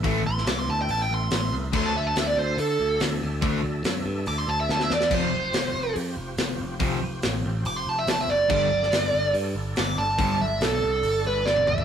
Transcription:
<<
  \new Staff \with { instrumentName = "Lead electric guitar" } { \time 4/4 \key f \lydian \tempo 4 = 142 r8 c'''8 d'''16 c'''16 a''16 g''16 a''16 g''16 c'''4 r8 | c'''16 a''16 e''16 a''16 e''16 d''16 c''8 a'4 r4 | r2 d'''16 c'''16 a''16 e''16 a''16 e''16 d''8 | c''2 r2 |
r2 d'''16 c'''16 a''16 e''16 a''16 e''16 d''8 | d''2 r4 d'''8 a''8~ | a''8 e''8 a'4. b'8 d''8 e''8 | }
  \new Staff \with { instrumentName = "Tonewheel organ" } { \time 4/4 \key f \lydian <a b e'>1 | <d' a' e''>1~ | <d' a' e''>1 | <f c' g'>1~ |
<f c' g'>1 | <g d' a'>1~ | <g d' a'>1 | }
  \new Staff \with { instrumentName = "Distorted electric guitar" } { \clef bass \time 4/4 \key f \lydian <a, e a>8 r2. r8 | <d a d'>8 r2. r8 | <d a d'>8 r2. r8 | <f, c f>8 r2. r8 |
<f, c f>8 r2. r8 | <g, d g>8 r2. r8 | <g, d g>8 r2. r8 | }
  \new Staff \with { instrumentName = "Overdriven electric guitar" } { \clef bass \time 4/4 \key f \lydian <a, e a>8 r2. r8 | <d a d'>8 r2. r8 | <d a d'>8 r2. r8 | <f, c f>8 r2. r8 |
<f, c f>8 r2. r8 | <g, d g>8 r2. r8 | <g, d g>8 r2. r8 | }
  \new Staff \with { instrumentName = "Picked electric bass" } { \clef bass \time 4/4 \key f \lydian a,,8 a,,8 c,8 d,8 a,,8 a,,8 a,,8 c,8 | d,4 d,8 d,8 d8 d,8 d,8 d,8 | d,8 d,8 fis,8 g,8 d,8 d,8 d,8 e,8 | f,,4 f,,8 f,,8 f,8 f,,8 f,,8 f,,8 |
f,,8 f,,8 a,,8 a,,8 f,,8 f,,8 f,,8 fis,,8 | g,,4 g,,8 g,,8 g,8 g,,8 g,,8 g,,8 | g,,8 g,,8 b,,8 c,8 g,,8 g,,8 g,,8 gis,,8 | }
  \new DrumStaff \with { instrumentName = "Drums" } \drummode { \time 4/4 <hho bd>8. sn16 <hho sn>4 hho4 <hho sn>4 | <cymc bd>4 <hho sn>4 hho4 <hho sn>4 | <hho bd>4 <hho sn>4 hho4 sn16 sn16 sn16 sn16 | <cymc bd>4 <hho sn>4 hho4 <hho sn>4 |
<hho bd>4 <hho sn>4 hho4 <hho sn>4 | <cymc bd>8. sn16 <hho sn>4 hho4 <hho sn>4 | <hho bd>4 <hho sn>4 hho4 sn16 tommh16 toml16 tomfh16 | }
>>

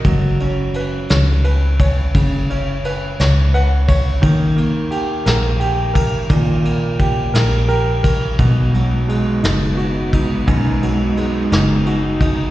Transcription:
<<
  \new Staff \with { instrumentName = "Grand piano" } { \time 6/8 \key fis \mixolydian \tempo 4. = 58 << { r2. | r2 fis''8 cis''8 | r2. | r2 ais'4 |
r2. | r2. | } \\ { fis8 cis'8 b'8 cis''8 b'8 cis''8 | cis8 cis'8 b'8 cis''8 b'4 | dis8 ais8 g'8 ais'8 g'8 ais'8 | ais,8 ais8 g'8 ais'8 g'8 ais'8 |
b,8 fis8 gis8 dis'8 fis'8 dis'8 | fis,8 fis8 gis8 dis'8 fis'8 dis'8 | } >> }
  \new Staff \with { instrumentName = "String section" } { \time 6/8 \key fis \mixolydian r2. | r2. | r2. | r2. |
<gis b dis'>2.~ | <gis b dis'>2. | }
  \new Staff \with { instrumentName = "Fingered electric bass" } { \clef bass \time 6/8 \key fis \mixolydian fis,,4. cis,4. | fis,,4. cis,4. | dis,4. ais,,4. | dis,4. ais,,4. |
b,,4. fis,,4. | b,,4. fis,,4. | }
  \new DrumStaff \with { instrumentName = "Drums" } \drummode { \time 6/8 <bd cymr>8 cymr8 cymr8 <cymr sn>8 cymr8 <bd cymr>8 | <bd cymr>8 cymr8 cymr8 <cymr sn>8 cymr8 <bd cymr>8 | <bd cymr>8 cymr8 cymr8 <cymr sn>8 cymr8 <bd cymr>8 | <bd cymr>8 cymr8 <bd cymr>8 <cymr sn>8 cymr8 <bd cymr>8 |
<bd cymr>8 cymr8 cymr8 <cymr sn>8 cymr8 <bd cymr>8 | <bd cymr>8 cymr8 cymr8 <cymr sn>8 cymr8 <bd cymr>8 | }
>>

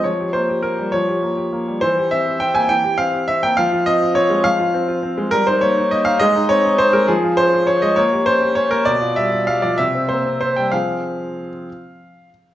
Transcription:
\new Staff \with { instrumentName = "Grand piano" } { \time 6/8 \key f \minor \tempo 4. = 68 << { des''8 c''8 bes'8 des''4. | c''8 e''8 g''16 aes''16 g''8 f''8 e''16 g''16 | f''8 ees''8 des''8 f''4. | bes'16 c''16 des''8 ees''16 f''16 ees''8 des''8 c''16 bes'16 |
aes'8 c''8 des''16 ees''16 des''8 c''8 des''16 bes'16 | d''8 e''8 f''16 d''16 e''8 c''8 c''16 g''16 | f''2~ f''8 r8 | } \\ { f16 g'16 bes16 g'16 bes16 g16 f16 g'16 bes16 g'16 bes16 g16 | e16 g'16 c'16 g'16 c'16 bes16 e16 g'16 c'16 g'16 c'16 bes16 | f16 f'16 c'16 f'16 c'16 aes16 f16 f'16 c'16 f'16 c'16 aes16 | g16 ees'16 bes16 ees'16 bes16 ees'16 aes16 ees'16 c'16 ees'16 c'16 aes16 |
f16 f'16 des'16 f'16 des'16 aes16 bes16 g'16 des'16 g'16 des'16 bes16 | b,16 f'16 g16 f'16 g16 f16 c16 c'16 bes16 c'16 bes16 g16 | <f c' aes'>4. r4. | } >> }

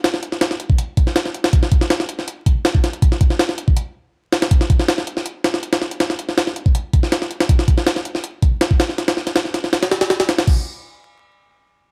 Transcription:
\new DrumStaff \with { instrumentName = "Drums" } \drummode { \time 4/4 \tempo 4 = 161 <hh sn>16 sn16 hh16 sn16 <hh sn>16 sn16 hh16 bd16 hh8 <hh bd>16 sn16 <hh sn>16 sn16 hh16 <hh sn>16 | <hh bd>16 sn16 <hh bd>16 sn16 <hh sn>16 sn16 hh16 sn16 hh8 <hh bd>8 <hh sn>16 bd16 <hh sn>16 hh16 | <hh bd>16 sn16 <hh bd>16 sn16 <hh sn>16 sn16 hh16 bd16 hh4 r8 <hh sn>16 <hh sn>16 | <hh bd>16 sn16 <hh bd>16 sn16 <hh sn>16 sn16 hh16 sn16 hh8 <hh sn>16 sn16 hh16 <hh sn>16 sn16 hh16 |
<hh sn>16 sn16 hh16 sn16 <hh sn>16 sn16 hh16 bd16 hh8 <hh bd>16 sn16 <hh sn>16 sn16 hh16 <hh sn>16 | <hh bd>16 sn16 <hh bd>16 sn16 <hh sn>16 sn16 hh16 sn16 hh8 <hh bd>8 <hh sn>16 bd16 <hh sn>16 sn16 | <hh sn>16 <hh sn>16 sn16 <hh sn>16 <hh sn>16 sn16 <hh sn>16 sn16 <hh sn>16 <hh sn>16 <hh sn>16 <hh sn>16 <hh sn>16 <hh sn>16 <hh sn>16 <hh sn>16 | <cymc bd>4 r4 r4 r4 | }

